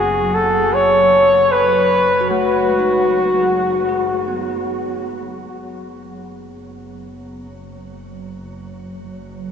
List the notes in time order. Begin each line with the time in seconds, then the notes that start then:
Already playing: F#1 F#3 G#4 B5
0.34 A4
0.74 C#5
1.51 B4
1.72 C#5
2.21 F#4
2.30 A3 F#4
2.69 G#3
2.79 D#4
3.39 G#4
3.89 G#4
4.28 B3
5.48 F#1 F#3